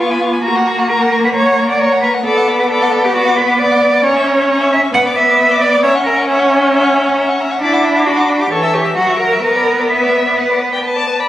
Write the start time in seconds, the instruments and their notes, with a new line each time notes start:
Already playing: viola B3, cello F4
0.00 violin F5 C#6
0.10 violin G#5 B5
0.21 violin F5 C#6
0.32 violin G#5 B5
0.44 viola A#3, cello F#4, violin A#5 C#6
0.56 violin F#5 A#5
0.67 violin A#5 C#6
0.79 violin F#5 A#5
0.89 cello A#4, violin A#5 C#6
1.01 violin F#5 A#5
1.12 violin A#5 C#6
1.24 cello B4, violin F#5 A#5
1.34 cello C#5, violin A#5 C#6
1.46 violin F#5 A#5
1.57 violin A#5 C#6
1.69 cello D5, violin F#5 A#5
1.80 cello C#5, violin A#5 C#6
1.92 violin F#5 A#5
2.02 cello B4, violin A#5 C#6
2.14 violin F#5 A#5
2.25 viola B3, cello A4, violin D5 B5
2.37 violin F#5 D6
2.48 violin D5 B5
2.59 cello B4, violin F#5 D6
2.70 cello A4, violin D5 B5
2.82 violin F#5 D6
2.92 violin D5 B5
3.04 cello G4, violin F#5 D6
3.14 cello F#4, violin D5 B5
3.26 violin F#5 D6
3.36 cello B4, violin D5 B5
3.47 violin F#5 D6
3.59 cello D5, violin D5 B5
3.71 violin F#5 D6
3.81 violin D5 B5
3.93 violin F#5 D6
4.04 viola C#4, violin C#5 A#5, cello C#5
4.16 violin E5 C#6
4.27 violin C#5 A#5
4.39 violin E5 C#6
4.49 violin C#5 A#5
4.61 violin E5 C#6
4.72 violin C#5 A#5, cello E5
4.82 violin E5 C#6
4.94 viola B3, violin B4 B5, cello F#5
5.05 violin D5 D6
5.16 violin B4 B5, cello E5
5.28 violin D5 D6
5.39 violin B4 B5
5.51 violin D5 D6
5.61 violin B4 B5, cello D5
5.73 violin D5 D6
5.83 viola C#4, cello C#5, violin E5 A#5
5.95 violin F#5 C#6
6.05 cello A#4, violin E5 A#5
6.16 violin F#5 C#6
6.27 cello C#5, violin E5 A#5
6.39 violin F#5 C#6
6.50 violin E5 A#5
6.60 violin F#5 C#6
6.71 violin E5 A#5
6.83 violin F#5 C#6
6.94 violin E5 A#5
7.06 violin F#5 C#6
7.17 violin E5 A#5
7.29 violin F#5 C#6
7.40 violin E5 A#5
7.51 violin F#5 C#6
7.61 viola D4, cello E4, violin D5 B5
7.73 violin F#5 D6
7.84 violin D5 B5
7.95 violin F#5 D6
8.06 cello F#4, violin D5 B5
8.17 violin F#5 D6
8.29 violin D5 B5
8.40 cello G4, violin F#5 D6
8.51 viola E3, cello A4, violin C#5 C#6
8.63 violin E5 E6
8.74 cello G4, violin C#5 C#6
8.85 violin E5 E6
8.96 viola F#3, cello F#4, violin F#5 A#5
9.07 violin E5 C#6
9.19 cello A#4, violin F#5 A#5
9.31 violin E5 C#6
9.43 viola B3, cello A#4, violin B4 F#5
9.55 violin D5 B5
9.67 violin B4 F#5
9.78 violin D5 B5
9.90 cello B4, violin B4 E5
10.03 violin D5
10.15 violin B4
10.26 violin D5
10.37 violin B4 F#5
10.50 violin D5
10.61 violin B4
10.73 violin D5 G5
10.85 violin B4 A5
10.96 violin D5
11.07 violin B4
11.19 violin D5 B5